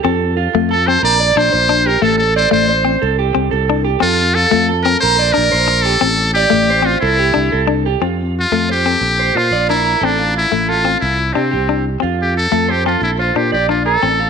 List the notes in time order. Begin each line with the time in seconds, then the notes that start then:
0.04 F2 C4 A4
0.37 F4
0.54 F2 A3
0.71 A4
0.87 C4 C5
1.03 A#1 A#4 D5
1.20 D5
1.36 A#1 D4 C5
1.53 A#1 C5
1.69 D4
1.86 G4 A#4
2.02 A1 A3 A4
2.18 A4
2.36 C5 D5
2.51 A1 A3 C5
2.68 C5
2.85 C4
3.02 C2 A4
3.19 G4
3.35 C2 C4
3.51 C2 A4
3.70 D4
3.85 G4
4.00 F2 C4 F4 A4
4.35 F4 A4
4.51 F2 A3
4.69 A4
4.83 C4 A#4
5.00 A#1 A#4 C5
5.19 D5
5.33 D4 A#4
5.38 A#1
5.52 A#1 C5
5.68 muted clean electric guitar stroke
5.83 G4 A4
6.01 A1 C4, muted clean electric guitar stroke
6.34 G4 D5
6.50 A1 A3
6.70 C5
6.82 C4 F4
7.00 C2 E4 A4
7.19 G4
7.34 C2 D4
7.52 C2 A4
7.67 D4
7.86 G4
8.02 F2 C4 F4
8.40 F4
8.52 F2 A3 A4
8.69 G4 C5
8.86 C4 A4
9.01 A#1
9.19 C5
9.35 A#2 F4, muted clean electric guitar stroke
9.51 A#1 D5
9.69 D4 E4 A#4
9.85 A#4
10.01 A1 C4 A4
10.05 D4
10.19 F4
10.37 E4
10.52 A1 A3
10.69 F4 A4
10.84 C4 F4
11.01 C2 E4
11.33 C3 C4 D4 G4
11.51 C2 G4
11.69 D4
12.00 F2 C4 F4
12.22 G4
12.37 A4
12.52 F2 A3 A4
12.68 G4 C5
12.85 C4 F4 A4
13.01 A#1 E4
13.19 F4 C5
13.35 A#2 D4 G4
13.52 A#1 G4 D5
13.69 D4 F4, muted clean electric guitar stroke
13.86 A4 A#4
14.03 A1 C4 A4
14.20 F4